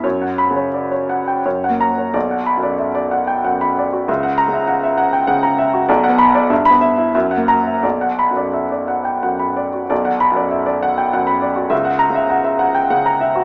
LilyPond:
<<
  \new Staff \with { instrumentName = "Grand piano" } { \time 3/4 \key b \minor \tempo 4 = 95 << { r8 b''8 r4. ais''8 | r8 b''8 r2 | r8 ais''8 r2 | r8 b''8 r16 b''8 r8. ais''8 |
r8 b''8 r2 | r8 b''8 r2 | r8 ais''8 r2 | } \\ { cis''16 fis''8 cis''16 d''16 cis''16 fis''16 g''16 cis''16 fis''8 cis''16 | d''16 fis''8 d''16 e''16 d''16 fis''16 g''16 fis''16 b''16 d''16 fis'16 | e''16 fis''8 e''16 fis''16 e''16 fis''16 g''16 fis''16 ais''16 e''16 fis'16 | d''16 fis''8 d''16 e''8 e''16 e'16 e''16 fis''8 e''16 |
d''16 fis''8 d''16 e''16 d''16 fis''16 g''16 fis''16 b''16 d''16 fis'16 | d''16 fis''8 d''16 e''16 d''16 fis''16 g''16 fis''16 b''16 d''16 fis'16 | e''16 fis''8 e''16 fis''16 e''16 fis''16 g''16 fis''16 ais''16 e''16 fis'16 | } >> }
  \new Staff \with { instrumentName = "Grand piano" } { \clef bass \time 3/4 \key b \minor \tuplet 3/2 { fis,4 cis8 } r4 \tuplet 3/2 { fis,8 ais4 } | \tuplet 3/2 { b,,4 fis,8 } r4 fis,8 r8 | \tuplet 3/2 { cis,4 cis8 } r4 cis8 r8 | \tuplet 3/2 { b,,8 b4 g,8 b4 fis,8 ais4 } |
\tuplet 3/2 { b,,4 fis,8 } r4 fis,8 r8 | \tuplet 3/2 { b,,4 fis,8 } r4 fis,8 r8 | \tuplet 3/2 { cis,4 cis8 } r4 cis8 r8 | }
>>